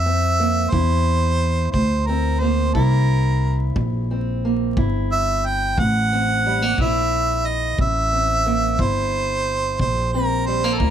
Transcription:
Already playing: upright bass F2, steel-string acoustic guitar C3 E4, harmonica E5
0.06 steel-string acoustic guitar C4
0.40 steel-string acoustic guitar A#3
0.70 upright bass E2, steel-string acoustic guitar C3 E4, harmonica C5, kick
1.72 upright bass D2, steel-string acoustic guitar C3, harmonica C5, kick
2.06 steel-string acoustic guitar C4, harmonica A#4
2.40 steel-string acoustic guitar A#3, harmonica C5
2.74 upright bass C2, steel-string acoustic guitar C3 E4, harmonica A#4, kick
3.76 upright bass A#1, steel-string acoustic guitar C3, kick
4.11 steel-string acoustic guitar C4
4.45 steel-string acoustic guitar A#3
4.77 upright bass G1, steel-string acoustic guitar C3 E4, kick
5.12 harmonica E5
5.46 harmonica G5
5.78 upright bass A1, steel-string acoustic guitar C3, harmonica F#5, kick
6.13 steel-string acoustic guitar C4
6.46 steel-string acoustic guitar G3
6.62 steel-string acoustic guitar A#3
6.78 upright bass A#1, steel-string acoustic guitar C3 E4, harmonica E5, kick
7.47 harmonica D#5
7.78 upright bass A1, steel-string acoustic guitar C3, harmonica E5, kick
8.13 steel-string acoustic guitar C4
8.46 steel-string acoustic guitar A#3
8.79 upright bass G1, steel-string acoustic guitar C3 E4, harmonica C5, kick
9.79 upright bass A#1, steel-string acoustic guitar C3, harmonica C5, kick
10.13 steel-string acoustic guitar C4, harmonica A#4
10.47 steel-string acoustic guitar G3, harmonica C5
10.64 steel-string acoustic guitar A#3
10.74 harmonica A4
10.79 upright bass D2, steel-string acoustic guitar C3 E4, harmonica A#4, kick

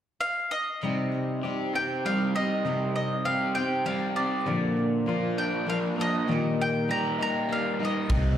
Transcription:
0.21 mandolin F5
0.51 mandolin D#5
0.83 steel-string acoustic guitar C3 G3 C4 D#4 G4
1.43 steel-string acoustic guitar G3 C4 D#4 G4
1.73 steel-string acoustic guitar C4 D#4 G4, mandolin G5
2.05 steel-string acoustic guitar G3 C4 D#4 G4, mandolin F5
2.35 steel-string acoustic guitar C4 D#4 G4, mandolin D#5
2.65 steel-string acoustic guitar C3 G3 C4 D#4 G4
2.96 mandolin D#5
3.25 steel-string acoustic guitar G3 C4 D#4 G4, mandolin F5
3.55 steel-string acoustic guitar C4 D#4 G4, mandolin G5
3.85 steel-string acoustic guitar G3 C4 D#4 G4, mandolin F5
4.16 steel-string acoustic guitar C4 D#4 G4, mandolin D5
4.45 steel-string acoustic guitar A#2 D3 F3 A#3 D4 A#4
5.06 steel-string acoustic guitar F3 A#3 D4 A#4, overdriven electric guitar F4
5.38 overdriven electric guitar D4, mandolin G5
5.66 steel-string acoustic guitar F3 A#3 D4 A#4, mandolin F5
5.96 steel-string acoustic guitar F3 A#3 A#4, overdriven electric guitar D4
6.01 mandolin D#5
6.27 steel-string acoustic guitar A#2 D#3 G3 A#3 D#4 G4
6.61 mandolin G5
6.88 steel-string acoustic guitar G3 A#3 D#4 G4, mandolin A#5
7.18 steel-string acoustic guitar G3 A#3 D#4 G4
7.23 mandolin A#5
7.49 steel-string acoustic guitar G3 A#3 D#4 G4, mandolin F5
7.79 steel-string acoustic guitar G3 A#3 D#4 G4
7.85 mandolin D#5
8.09 upright bass C2, steel-string acoustic guitar C3 G3 C4 D#4 G4, kick, ride

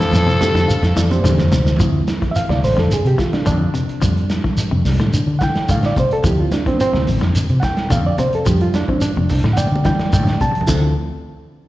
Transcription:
Already playing: baritone saxophone A2, trombone F3, alto saxophone A4
0.00 clean electric guitar E3, snare, shekere
0.12 fingered electric bass F2, snare, high conga, shekere
0.27 clean electric guitar C3, shekere
0.40 reed electric piano C4 D4 G4 A4 A5, snare, high conga, low conga, shekere
0.54 fingered electric bass F2, clean electric guitar D3, snare, shekere
0.68 reed electric piano F5, shekere
0.83 fingered electric bass F2, snare, shekere
0.96 fingered electric bass F2, clean electric guitar E3, reed electric piano D5, snare, high conga, shekere
1.10 reed electric piano C4 D4 G4 C5, high conga, shekere
1.19 reed electric piano C5, high conga
1.24 fingered electric bass E2, clean electric guitar D3, snare, shekere
1.29 low conga
1.38 snare, low conga, shekere
1.48 fingered electric bass D2, snare, low conga
1.52 clean electric guitar C3, shekere
1.66 snare, shekere
1.76 fingered electric bass D2, reed electric piano F3 C4 E4, clean electric guitar F3, kick, closed hi-hat, low conga, shekere
2.08 snare, closed hi-hat, shekere
2.22 clean electric guitar E3, kick, snare, closed hi-hat
2.31 reed electric piano E5
2.36 reed electric piano F5, closed hi-hat, shekere
2.49 fingered electric bass D2, clean electric guitar C3, reed electric piano D5, snare
2.63 fingered electric bass A1, reed electric piano C5, snare, open hi-hat, shekere
2.77 fingered electric bass F2, clean electric guitar D3, reed electric piano A4, snare, closed hi-hat
2.91 reed electric piano G#4, closed hi-hat, shekere
3.05 fingered electric bass C3, reed electric piano G4, closed hi-hat
3.18 clean electric guitar E3, reed electric piano F4, kick, snare, closed hi-hat, shekere
3.33 reed electric piano D4, muted fingered electric bass stroke, snare, closed hi-hat
3.46 fingered electric bass F2, clean electric guitar D3, reed electric piano F3 D4, kick, closed hi-hat, shekere
3.74 clean electric guitar C3, closed hi-hat, shekere
3.89 closed hi-hat
4.02 fingered electric bass F2, clean electric guitar F3, reed electric piano G3 A3 D4, kick, closed hi-hat, shekere
4.17 closed hi-hat
4.30 snare, closed hi-hat, shekere
4.44 clean electric guitar E3, kick, snare
4.57 closed hi-hat, shekere
4.71 fingered electric bass F2, clean electric guitar C3
4.85 fingered electric bass C2, reed electric piano G3 A3 D4, snare, open hi-hat, shekere
4.99 fingered electric bass A2, clean electric guitar D3, snare
5.13 closed hi-hat, shekere
5.27 fingered electric bass D3
5.39 clean electric guitar E3, reed electric piano F#5, kick, snare, closed hi-hat, shekere
5.43 reed electric piano G5
5.55 muted fingered electric bass stroke, snare, closed hi-hat
5.69 fingered electric bass A2, clean electric guitar D3, reed electric piano F5, kick, closed hi-hat, shekere
5.83 reed electric piano D5, snare, closed hi-hat
5.96 clean electric guitar C3, reed electric piano C5, kick, closed hi-hat, shekere
6.11 reed electric piano A4, closed hi-hat
6.24 fingered electric bass D2, clean electric guitar F3, reed electric piano F3 C4 E4 G4, kick, closed hi-hat, shekere
6.41 reed electric piano F4
6.52 reed electric piano D4, snare, closed hi-hat, high conga, shekere
6.66 clean electric guitar E3, reed electric piano C4, kick, snare, closed hi-hat
6.77 reed electric piano B3, closed hi-hat, high conga, shekere
6.81 reed electric piano C4
6.93 fingered electric bass D2, clean electric guitar C3, snare, high conga
7.07 fingered electric bass A1, open hi-hat, high conga, low conga, shekere
7.21 fingered electric bass F2, clean electric guitar D3, snare, closed hi-hat
7.34 closed hi-hat, high conga, shekere
7.49 fingered electric bass C3, closed hi-hat
7.60 reed electric piano F#5, muted clean electric guitar stroke, kick, snare, closed hi-hat, low conga, shekere
7.65 reed electric piano G5
7.77 muted fingered electric bass stroke, snare, closed hi-hat
7.90 fingered electric bass F2, clean electric guitar D3, reed electric piano F5, kick, closed hi-hat, high conga, shekere
8.06 reed electric piano D5
8.18 clean electric guitar C3, reed electric piano C5, closed hi-hat, high conga, low conga, shekere
8.33 reed electric piano A4, closed hi-hat
8.46 fingered electric bass F2, clean electric guitar F3, reed electric piano G3 A3 D4 G4, kick, closed hi-hat, shekere
8.61 reed electric piano F4, closed hi-hat
8.74 reed electric piano D4, snare, closed hi-hat, high conga, shekere
8.88 clean electric guitar E3, reed electric piano C4, kick
8.98 reed electric piano C#4 D4, closed hi-hat, shekere
9.02 high conga
9.16 fingered electric bass F2, clean electric guitar C3, high conga
9.29 fingered electric bass C2, open hi-hat, high conga, low conga, shekere
9.44 fingered electric bass A2, clean electric guitar D3, snare, closed hi-hat
9.53 reed electric piano D5 F#5 G5, closed hi-hat, high conga
9.57 shekere
9.67 high conga
9.72 fingered electric bass D3, high conga
9.84 clean electric guitar E3, reed electric piano G3 A3 D4 D5 G5, kick, snare, closed hi-hat, low conga, shekere
9.94 high conga
9.99 muted fingered electric bass stroke, snare, closed hi-hat
10.13 fingered electric bass A2, clean electric guitar D3, reed electric piano D5 G5, kick, closed hi-hat, low conga, shekere
10.23 low conga
10.27 snare, closed hi-hat
10.33 low conga
10.41 clean electric guitar C3, reed electric piano A5, kick, closed hi-hat, shekere
10.51 closed hi-hat, low conga
10.61 low conga
10.67 fingered electric bass D2, clean electric guitar D3, reed electric piano C4 E4 F4 A4, kick, crash, low conga, shekere

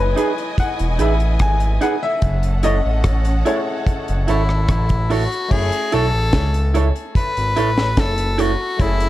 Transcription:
Already playing: analog synth bass F#1, grand piano F#3 G#3 E4 C#5 D#5, string section E4 D#5 G#5
0.00 grand piano B4
0.16 clean electric guitar D#4 G#4 B4, closed hi-hat
0.38 closed hi-hat
0.58 grand piano F#5, kick, closed hi-hat
0.79 analog synth bass E1, closed hi-hat
0.99 analog synth bass A1, clean electric guitar D#4 G#4 B4, grand piano E5, closed hi-hat
1.20 closed hi-hat
1.39 analog synth bass G#1, grand piano G#5, kick, cross-stick, closed hi-hat
1.60 closed hi-hat
1.81 clean electric guitar D#4 G#4 B4, grand piano F#5, closed hi-hat
2.03 grand piano E5
2.22 analog synth bass F#1, string section C#4 A4 F#5, kick, closed hi-hat
2.43 closed hi-hat
2.63 clean electric guitar E4 A4 C#5, grand piano D#5, closed hi-hat
2.85 analog synth bass A1
3.04 analog synth bass A1, kick, cross-stick, closed hi-hat
3.25 closed hi-hat
3.45 grand piano A3 E4 G#4 C#5, clean electric guitar E4 A4 C#5, closed hi-hat
3.87 kick, closed hi-hat
4.08 analog synth bass F#1, closed hi-hat
4.28 analog synth bass G#1, clean electric guitar E4 A4 C#5, tenor saxophone E4, closed hi-hat
4.49 cross-stick
4.68 analog synth bass A1, tenor saxophone E4, kick, cross-stick, closed hi-hat
4.89 kick, closed hi-hat
5.10 clean electric guitar E4 A4 C#5, tenor saxophone F#4, open hi-hat
5.32 closed hi-hat
5.48 analog synth bass F#1, grand piano A3 C#4 E4, tenor saxophone G#4, kick, crash
5.54 grand piano G#5
5.72 closed hi-hat
5.92 analog synth bass B1, clean electric guitar E4 A4 C#5, tenor saxophone A4, closed hi-hat
6.14 analog synth bass A1
6.33 analog synth bass C#2, kick, snare, closed hi-hat
6.54 closed hi-hat
6.74 clean electric guitar E4 A4 C#5, closed hi-hat
6.96 closed hi-hat
7.15 tenor saxophone B4, kick, closed hi-hat
7.37 analog synth bass G#1, closed hi-hat
7.56 analog synth bass A1, clean electric guitar E4 A4 C#5, closed hi-hat
7.77 snare, closed hi-hat
7.97 analog synth bass F#1, tenor saxophone A4, kick, snare, closed hi-hat
8.18 closed hi-hat
8.38 clean electric guitar E4 A4 C#5, tenor saxophone F#4, closed hi-hat
8.77 analog synth bass F#1, grand piano A3 C#4 E4, kick, closed hi-hat
8.81 tenor saxophone E4, grand piano G#4
9.00 closed hi-hat

